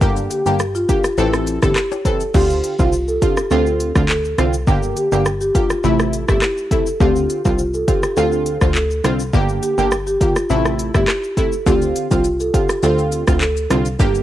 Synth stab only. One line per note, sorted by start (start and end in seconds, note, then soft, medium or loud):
0.01 0.42 D3 medium
0.01 0.42 A#3 medium
0.01 0.42 G4 loud
0.46 0.62 D3 medium
0.46 0.62 A#3 medium
0.46 0.62 G4 medium
0.89 1.06 D3 medium
0.89 1.06 A#3 medium
0.89 1.06 G4 medium
1.18 1.59 E3 medium
1.18 1.59 C4 medium
1.18 1.59 A4 loud
1.62 1.78 E3 medium
1.62 1.78 C4 medium
1.62 1.78 A4 medium
2.05 2.22 E3 medium
2.05 2.23 C4 medium
2.05 2.23 A4 medium
2.34 2.75 D3 medium
2.34 2.75 C4 medium
2.34 2.75 F4 loud
2.79 2.95 D3 medium
2.79 2.95 C4 medium
2.79 2.95 F4 medium
3.22 3.39 D3 medium
3.22 3.39 C4 medium
3.22 3.39 F4 medium
3.51 3.92 D3 medium
3.51 3.92 C4 medium
3.51 3.92 F4 loud
3.95 4.11 D3 medium
3.95 4.11 C4 medium
3.95 4.11 F4 medium
4.38 4.55 D3 medium
4.38 4.56 C4 medium
4.38 4.56 F4 medium
4.67 5.08 D3 medium
4.67 5.08 A#3 medium
4.67 5.08 G4 loud
5.12 5.28 D3 medium
5.12 5.28 A#3 medium
5.12 5.28 G4 medium
5.55 5.72 D3 medium
5.55 5.72 A#3 medium
5.55 5.72 G4 medium
5.84 6.25 C3 medium
5.84 6.25 A3 medium
5.84 6.25 E4 loud
6.28 6.44 C3 medium
6.28 6.44 A3 medium
6.28 6.44 E4 medium
6.71 6.88 C3 medium
6.71 6.89 A3 medium
6.71 6.89 E4 medium
7.00 7.41 D3 medium
7.00 7.41 C4 medium
7.00 7.41 F4 loud
7.45 7.61 D3 medium
7.45 7.61 C4 medium
7.45 7.61 F4 medium
7.88 8.05 D3 medium
7.88 8.05 C4 medium
7.88 8.05 F4 medium
8.17 8.58 D3 loud
8.17 8.58 C4 medium
8.17 8.58 F4 loud
8.61 8.77 D3 medium
8.61 8.77 C4 medium
8.61 8.77 F4 medium
9.04 9.21 D3 medium
9.04 9.22 C4 medium
9.04 9.22 F4 medium
9.33 9.74 D3 loud
9.33 9.74 A#3 medium
9.33 9.74 G4 loud
9.78 9.94 D3 medium
9.78 9.94 A#3 medium
9.78 9.94 G4 medium
10.21 10.38 D3 medium
10.21 10.38 A#3 medium
10.21 10.38 G4 medium
10.50 10.91 C3 medium
10.50 10.91 A3 medium
10.50 10.91 E4 loud
10.94 11.10 C3 medium
10.94 11.10 A3 medium
10.94 11.10 E4 medium
11.37 11.54 C3 medium
11.37 11.55 A3 medium
11.37 11.55 E4 medium
11.66 12.07 D3 medium
11.66 12.07 C4 medium
11.66 12.07 F4 loud
12.11 12.27 D3 medium
12.11 12.27 C4 medium
12.11 12.27 F4 medium
12.53 12.71 D3 medium
12.53 12.71 C4 medium
12.53 12.71 F4 medium
12.83 13.24 D3 medium
12.83 13.24 C4 medium
12.83 13.24 F4 loud
13.27 13.43 D3 medium
13.27 13.43 C4 medium
13.27 13.43 F4 medium
13.70 13.87 D3 medium
13.70 13.88 C4 medium
13.70 13.88 F4 medium
13.99 14.23 D3 loud
13.99 14.23 A#3 medium
13.99 14.23 G4 loud